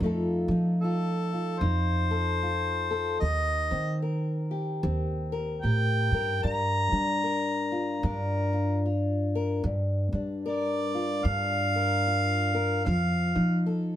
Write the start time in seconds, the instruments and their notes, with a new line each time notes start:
0.00 upright bass F2, steel-string acoustic guitar F3 A3 D#4
0.04 steel-string acoustic guitar F4 A4
0.48 upright bass F3, steel-string acoustic guitar D#4
0.81 steel-string acoustic guitar F4, harmonica A4
1.33 steel-string acoustic guitar F4
1.59 upright bass F2, steel-string acoustic guitar D#4, harmonica C5
2.11 steel-string acoustic guitar A4
2.43 steel-string acoustic guitar F4
2.91 steel-string acoustic guitar A4
3.20 upright bass D#2, steel-string acoustic guitar D#3, harmonica D#5
3.71 upright bass D#3, steel-string acoustic guitar C4
4.02 steel-string acoustic guitar A#4
4.51 steel-string acoustic guitar G4
4.83 upright bass D#2, steel-string acoustic guitar C4
5.32 steel-string acoustic guitar A#4
5.62 upright bass A2, steel-string acoustic guitar G4, harmonica G5
6.11 upright bass G2, steel-string acoustic guitar A#4
6.43 upright bass G2, steel-string acoustic guitar G2, harmonica A#5
6.92 upright bass G3, steel-string acoustic guitar D4
7.24 steel-string acoustic guitar A#4
7.72 steel-string acoustic guitar F4
8.03 upright bass G2, steel-string acoustic guitar D4, harmonica A#4
8.53 steel-string acoustic guitar F4
8.86 steel-string acoustic guitar F4
9.35 steel-string acoustic guitar A#4
9.64 upright bass G2, steel-string acoustic guitar G2
10.12 upright bass G3, steel-string acoustic guitar D4
10.46 steel-string acoustic guitar A#4, harmonica D5
10.94 steel-string acoustic guitar F4
11.24 upright bass G2, steel-string acoustic guitar D4, harmonica F5
11.75 steel-string acoustic guitar A#4
12.07 steel-string acoustic guitar F4
12.54 steel-string acoustic guitar A#4
12.85 upright bass F2, steel-string acoustic guitar F3, harmonica F5
13.35 upright bass F3, steel-string acoustic guitar D#4
13.66 steel-string acoustic guitar A4